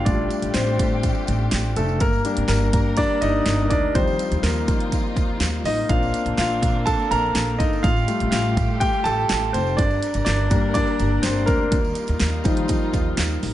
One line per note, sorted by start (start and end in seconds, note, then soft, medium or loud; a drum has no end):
0.04 0.26 A1 medium
0.04 0.38 G3 medium
0.04 1.98 A3 medium
0.04 0.39 A3 soft
0.04 0.52 D4 medium
0.04 1.98 F4 medium
0.04 0.39 F4 medium
0.04 1.98 G4 medium
0.04 0.56 D5 medium
0.04 kick loud
0.04 closed hi-hat medium
0.04 tambourine soft
0.31 closed hi-hat medium
0.31 tambourine medium
0.42 0.52 A1 medium
0.42 closed hi-hat medium
0.42 tambourine soft
0.54 0.75 A1 loud
0.54 1.01 C4 medium
0.54 1.00 C5 medium
0.54 snare loud
0.54 clap medium
0.54 closed hi-hat medium
0.54 tambourine medium
0.79 1.09 A2 medium
0.79 kick loud
0.79 closed hi-hat medium
0.79 tambourine soft
1.03 kick medium
1.03 closed hi-hat medium
1.03 tambourine medium
1.15 tambourine soft
1.27 1.48 A1 loud
1.27 closed hi-hat medium
1.27 tambourine soft
1.51 1.72 A1 medium
1.51 snare loud
1.51 clap medium
1.51 closed hi-hat loud
1.51 tambourine medium
1.76 2.01 F1 medium
1.76 1.83 A3 medium
1.76 1.82 A4 medium
1.76 closed hi-hat medium
1.76 tambourine soft
1.89 tambourine soft
2.00 2.21 G1 medium
2.00 5.85 G3 medium
2.00 3.93 A#3 medium
2.00 2.24 A#3 medium
2.00 3.93 A#4 medium
2.00 2.47 A#4 medium
2.00 kick loud
2.00 closed hi-hat medium
2.00 tambourine soft
2.13 tambourine soft
2.25 2.94 G3 medium
2.25 2.48 A#3 medium
2.25 2.95 D4 medium
2.25 closed hi-hat medium
2.25 tambourine soft
2.37 2.47 G1 medium
2.37 closed hi-hat medium
2.48 2.69 G1 loud
2.48 2.95 A#3 medium
2.48 2.99 A#4 medium
2.48 snare loud
2.48 clap medium
2.48 closed hi-hat medium
2.48 tambourine medium
2.73 3.03 G2 loud
2.73 kick medium
2.73 closed hi-hat medium
2.73 tambourine soft
2.97 3.20 G3 medium
2.97 3.20 A#3 medium
2.97 3.21 D4 medium
2.97 3.20 D5 loud
2.97 kick medium
2.97 closed hi-hat medium
2.97 tambourine medium
3.21 3.42 G1 medium
3.21 3.68 D#4 medium
3.21 3.67 D#5 loud
3.21 closed hi-hat medium
3.21 tambourine soft
3.46 3.66 G1 medium
3.46 snare loud
3.46 clap loud
3.46 closed hi-hat loud
3.46 tambourine medium
3.70 3.91 D2 medium
3.70 3.94 D4 medium
3.70 3.96 D5 medium
3.70 kick medium
3.70 closed hi-hat medium
3.70 tambourine soft
3.95 4.15 D#2 loud
3.95 4.65 F3 medium
3.95 4.65 G3 medium
3.95 4.41 C4 medium
3.95 5.88 D#4 medium
3.95 4.65 D#4 medium
3.95 5.88 F4 medium
3.95 4.45 C5 medium
3.95 kick loud
3.95 closed hi-hat medium
3.95 tambourine soft
4.07 tambourine soft
4.19 closed hi-hat medium
4.19 tambourine medium
4.31 4.42 D#2 medium
4.31 closed hi-hat soft
4.31 tambourine soft
4.43 4.63 D#2 loud
4.43 4.90 A#3 medium
4.43 4.89 A#4 medium
4.43 snare loud
4.43 clap medium
4.43 closed hi-hat medium
4.43 tambourine medium
4.68 4.98 D#3 medium
4.68 kick loud
4.68 closed hi-hat medium
4.68 tambourine soft
4.80 closed hi-hat soft
4.92 kick medium
4.92 closed hi-hat medium
4.92 tambourine medium
5.17 5.37 D#2 medium
5.17 kick medium
5.17 closed hi-hat medium
5.17 tambourine soft
5.40 5.60 D#2 medium
5.40 snare loud
5.40 clap medium
5.40 closed hi-hat medium
5.40 tambourine loud
5.64 5.85 A1 medium
5.64 5.72 D#4 medium
5.64 5.71 D#5 loud
5.64 snare soft
5.64 open hi-hat medium
5.64 tambourine soft
5.89 6.10 A#1 medium
5.89 7.80 A#3 medium
5.89 7.82 A#3 medium
5.89 7.80 C4 soft
5.89 7.82 C4 medium
5.89 7.82 D4 medium
5.89 7.80 D4 medium
5.89 6.36 F4 medium
5.89 6.36 F5 loud
5.89 kick loud
5.89 closed hi-hat medium
5.89 tambourine soft
6.03 tambourine soft
6.14 closed hi-hat medium
6.14 tambourine medium
6.26 6.36 A#1 medium
6.26 closed hi-hat medium
6.38 6.58 A#1 medium
6.38 6.84 F4 medium
6.38 6.88 F5 medium
6.38 snare loud
6.38 clap medium
6.38 closed hi-hat medium
6.38 tambourine medium
6.63 6.92 A#2 medium
6.63 kick medium
6.63 closed hi-hat medium
6.63 tambourine soft
6.86 7.09 A4 medium
6.86 7.11 A5 loud
6.86 kick medium
6.86 closed hi-hat medium
6.86 tambourine medium
7.00 tambourine soft
7.11 7.31 A#1 medium
7.11 7.57 A#4 medium
7.11 7.61 A#5 loud
7.11 closed hi-hat medium
7.11 tambourine soft
7.35 7.55 A#1 medium
7.35 snare loud
7.35 clap medium
7.35 closed hi-hat loud
7.35 tambourine loud
7.59 7.80 G1 medium
7.59 7.83 D#4 medium
7.59 7.84 D#5 medium
7.59 kick loud
7.59 closed hi-hat medium
7.59 tambourine soft
7.73 tambourine soft
7.83 8.04 A1 loud
7.83 9.77 A3 medium
7.83 8.07 F4 medium
7.83 9.77 F4 medium
7.83 9.77 G4 medium
7.83 8.30 F5 loud
7.83 kick loud
7.83 closed hi-hat medium
7.83 tambourine soft
7.97 tambourine soft
8.08 8.77 G3 medium
8.08 8.77 A3 medium
8.08 8.31 F4 medium
8.08 closed hi-hat medium
8.08 tambourine medium
8.20 8.31 A1 medium
8.20 closed hi-hat medium
8.31 8.52 A1 loud
8.31 8.78 F4 medium
8.31 8.82 F5 medium
8.31 snare loud
8.31 clap medium
8.31 closed hi-hat medium
8.31 tambourine medium
8.57 8.87 A2 loud
8.57 kick medium
8.57 closed hi-hat medium
8.57 tambourine soft
8.80 9.04 G4 medium
8.80 9.03 G5 loud
8.80 kick medium
8.80 closed hi-hat medium
8.80 tambourine medium
8.93 tambourine soft
9.04 9.25 A1 loud
9.04 9.51 A4 medium
9.04 9.50 A5 loud
9.04 closed hi-hat medium
9.04 tambourine soft
9.29 9.50 A1 medium
9.29 snare loud
9.29 clap medium
9.29 closed hi-hat loud
9.29 tambourine medium
9.53 9.79 F1 medium
9.53 9.77 C4 medium
9.53 9.79 C5 medium
9.53 closed hi-hat medium
9.53 tambourine medium
9.67 tambourine soft
9.77 9.98 G1 loud
9.77 13.54 G3 medium
9.77 11.71 D4 medium
9.77 10.24 D4 medium
9.77 11.71 A#4 medium
9.77 10.23 D5 loud
9.77 kick loud
9.77 closed hi-hat medium
9.77 tambourine soft
9.91 tambourine soft
10.02 closed hi-hat medium
10.02 tambourine soft
10.14 10.25 G1 medium
10.14 closed hi-hat medium
10.14 tambourine soft
10.25 10.47 G1 medium
10.25 10.50 D4 medium
10.25 10.73 D5 loud
10.25 snare loud
10.25 clap medium
10.25 closed hi-hat medium
10.25 tambourine medium
10.50 10.81 G2 loud
10.50 11.68 G3 medium
10.50 11.47 A#3 medium
10.50 10.75 D4 medium
10.50 kick loud
10.50 closed hi-hat medium
10.50 tambourine soft
10.74 11.21 D4 medium
10.74 11.20 D5 loud
10.74 kick medium
10.74 closed hi-hat medium
10.74 tambourine medium
10.87 tambourine soft
10.99 11.20 G1 medium
10.99 closed hi-hat medium
10.99 tambourine soft
11.22 11.44 G1 medium
11.22 11.47 C4 medium
11.22 11.48 C5 medium
11.22 snare loud
11.22 clap medium
11.22 closed hi-hat loud
11.22 tambourine medium
11.46 11.68 D2 medium
11.46 13.39 A#3 medium
11.46 13.38 A#4 medium
11.46 kick medium
11.46 closed hi-hat medium
11.46 tambourine soft
11.72 11.92 D#2 medium
11.72 13.54 D#4 medium
11.72 13.54 F4 medium
11.72 kick loud
11.72 closed hi-hat medium
11.72 tambourine soft
11.84 tambourine soft
11.95 closed hi-hat medium
11.95 tambourine medium
12.07 12.19 D#2 medium
12.07 closed hi-hat medium
12.07 tambourine soft
12.20 12.41 D#2 medium
12.20 snare loud
12.20 clap medium
12.20 closed hi-hat medium
12.20 tambourine medium
12.44 12.76 D#3 medium
12.44 12.77 F3 medium
12.44 12.78 G3 medium
12.44 12.78 D#4 medium
12.44 kick loud
12.44 closed hi-hat medium
12.44 tambourine soft
12.57 closed hi-hat soft
12.68 kick medium
12.68 closed hi-hat medium
12.68 tambourine medium
12.93 13.14 D#2 medium
12.93 kick medium
12.93 closed hi-hat medium
12.93 tambourine medium
13.17 13.38 D#2 medium
13.17 snare loud
13.17 clap loud
13.17 closed hi-hat loud
13.17 tambourine medium
13.43 13.54 A1 medium
13.43 snare soft
13.43 open hi-hat medium
13.43 tambourine medium